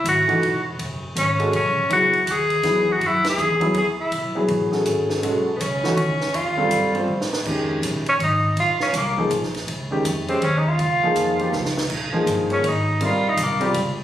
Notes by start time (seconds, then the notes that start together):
0.04 G#1, hi-hat pedal, ride
0.08 F#4
0.28 E3 A3 D#4 F#4, ride
0.41 E1, ride
0.78 F#1, ride
1.16 G#1 C#4, hi-hat pedal, ride
1.39 G#3 C#4 F#4 A4, ride
1.52 B1 C#4, ride
1.65 A1
1.77 F#1
1.89 C#2 F#3 B3 E4 F#4 G#4, ride
2.13 ride
2.26 D#2, hi-hat pedal, ride
2.31 G#4
2.50 ride
2.63 E2 F#3 B3 E4 G#4, snare, ride
2.87 kick
2.92 F#4
3.01 F#2, ride
3.07 E4
3.24 muted upright bass stroke, snare, ride
3.29 G#4
3.37 E2, hi-hat pedal
3.60 F#3 B3 E4 G#4, ride
3.74 E2 G#4, ride
3.98 E4, muted upright bass stroke
4.12 B1, ride
4.35 F#3 B3 E4 G#4
4.48 A1, ride
4.72 C#4 F#4 G#4 A4, snare
4.86 G#1, hi-hat pedal, ride
5.10 snare
5.22 B1 G#3 C#4 F#4 A4, ride
5.56 B3
5.60 C#2 C#4, hi-hat pedal, ride
5.83 E3 A3 D#4 F#4, snare
5.97 D#2 C#4, ride
6.09 C#2
6.21 B1, snare
6.34 F2 F4, ride
6.46 D#2
6.57 C2 G3 C4 F4 A4
6.71 G2, hi-hat pedal, ride
6.94 G3 C4 F4 C5, ride
7.07 A2
7.21 snare
7.33 snare
7.45 F2 D#3 G#3 C#4 G4, kick, crash
7.82 A#1, hi-hat pedal, ride
8.06 C#4, ride
8.19 G#1, ride
8.23 D#4
8.56 A#1 F4, ride
8.80 C#4, snare
8.93 C2 A#3, hi-hat pedal, ride
9.17 F3 A#3 D#4 G#4
9.30 A#1, hi-hat pedal, ride
9.43 snare
9.54 snare, ride
9.67 C#2, ride
9.91 D#3 G#3 C#4 G4
10.04 F2, hi-hat pedal, ride
10.28 G#3 C4 C#4 G4 C5, ride
10.42 D#2 C#4, ride
10.58 D#4
10.68 F4
10.79 C#2, ride
11.02 F3 A#3 D#4 G#4, muted upright bass stroke
11.15 F2, hi-hat pedal, ride
11.39 F3 A#3 D#4 G4, ride
11.52 C#2, snare
11.65 snare
11.78 snare
11.90 A#1, kick, crash
12.13 F3 A#3 D#4 G#4
12.26 G1, hi-hat pedal, ride
12.50 A#3 C#4 D#4 G#4 C#5, ride
12.63 G#1, ride
12.68 D#4
13.00 A#1 G3 C4 F4 A#4, ride
13.04 F4
13.29 D#4
13.37 C2, hi-hat pedal, ride
13.43 A#3
13.60 G3 C4 F4 G4, ride
13.74 C#2, ride